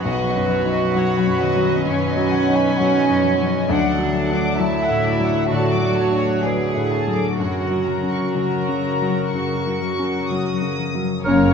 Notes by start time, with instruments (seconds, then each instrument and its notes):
Already playing: grand piano F#3, harp F#3 B3 D#4
0.04 grand piano B1, harp B2, viola section F#3 B4, cello section F#4, violin section B4 D#5 F#5
0.26 harp B3, violin section D#5
0.35 grand piano F#2
0.49 harp F#3, violin section C#5
0.65 grand piano D#4
0.72 harp D#4, violin section D#5
0.95 grand piano F#3, harp B3, violin section C#5 F#5
1.18 harp F#3, violin section B5
1.27 grand piano F#2
1.39 harp D#3, violin section D#5 F#5
1.56 grand piano F#3
1.63 harp F#3, violin section D#5
1.85 grand piano F#2, harp B2, cello section C#4, violin section C#5 G#5
2.08 harp B3, violin section D#5
2.17 grand piano F#3
2.31 harp F#3, violin section F#5
2.48 grand piano D#4
2.55 harp D#4, violin section B5
2.76 harp B3, violin section F#5
2.80 grand piano F#3
2.99 harp F#3, violin section D#5
3.09 grand piano F#2
3.21 harp F3, violin section C#5
3.40 grand piano F#3
3.46 harp F#3, violin section D#5
3.69 grand piano D2, harp D3, viola section F#3 A3, cello section D4, violin section D5 F#5
3.91 harp F#3, violin section F#5
3.99 grand piano F#3
4.13 harp D4, violin section A5
4.29 grand piano D4
4.35 harp A3, violin section D6
4.58 harp F#3, grand piano F#3, cello section E4, violin section E5 A5
4.82 harp D4, violin section F#5
4.89 grand piano A2
5.04 harp C#4, violin section D5
5.20 grand piano F#3
5.26 harp D4, violin section F#5
5.49 grand piano A2, harp D3, cello section F#4, violin section A5
5.53 violin section D5
5.73 harp F#3, violin section D6
5.82 grand piano F#3
5.94 harp D4, violin section C#5 A5
6.12 grand piano D4
6.18 harp F#4, violin section F#5
6.43 harp F#3, grand piano F#3, cello section G#4, violin section B4 D5
6.67 harp D4, violin section F#5
6.75 grand piano A2
6.90 harp C#4, violin section A4 A5
7.07 grand piano F#3
7.14 harp D4, violin section D6
7.38 harp F#2, grand piano F#2, viola section F#3 A#4, cello section F#4, violin section A#4 C#5 F#5
7.62 harp C#3, violin section F#5
7.71 grand piano F#3
7.86 harp F#3, violin section A#5
8.03 grand piano C#4
8.11 harp C#4, violin section C#6
8.35 harp C#3, grand piano F#3, violin section A#5
8.59 harp F#3
8.68 grand piano C#3
9.02 grand piano F#3
9.08 harp F#3
9.33 harp F#2, grand piano C#3, violin section C#6
9.58 harp C#3
9.66 grand piano F#3
9.82 harp F#3
9.99 grand piano C#4
10.06 harp C#4
10.28 harp C#3, grand piano F#3, violin section D#6
10.53 harp F#3
10.62 grand piano C#3
10.77 harp F3
10.95 grand piano F#3
11.03 harp F#3
11.25 double bass section F#1, harp F#2, cello section F#2, grand piano F#2, clarinet A#3, french horn section C#4, viola section C#4 A#4, oboe A#4, flute C#5, violin section C#5
11.50 harp C#3